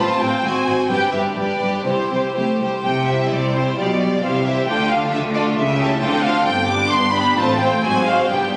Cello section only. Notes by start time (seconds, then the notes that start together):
0.22 A2
0.44 G#2
0.66 G#2
0.89 G2
1.12 G2
1.36 G2
1.61 G2
1.85 C3
2.11 C3
2.36 C3
2.60 C3
2.84 C3
3.31 C3
3.76 B2
4.22 C3
4.68 D3
5.13 D3
5.57 C#3
6.02 D3
6.47 G2
6.91 G2
7.37 A2
7.84 G#2
8.30 G2